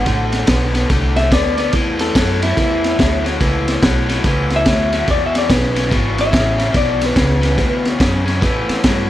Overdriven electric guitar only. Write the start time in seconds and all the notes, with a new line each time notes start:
0.05 D3 A3
0.47 D3 B3
0.74 D3 B3
0.90 D3 A3
1.31 D3 B3
1.57 D3 B3
1.74 A2 E3
2.15 A2 F#3
2.42 A2 F#3
2.57 A2 E3
2.99 A2 F#3
3.24 A2 F#3
3.40 A2 E3
3.82 A2 F#3
4.09 A2 F#3
4.25 A2 E3
4.67 A2 F#3
4.93 A2 F#3
5.08 E2 B2
5.49 E2 C#3
5.75 E2 C#3
5.90 E2 B2
6.31 E2 C#3
6.57 E2 C#3
6.72 E2 B2
7.16 E2 C#3
7.41 E2 C#3
7.57 E2 B2
7.99 E2 C#3
8.26 E2 C#3
8.41 A2 E3
8.84 A2 F#3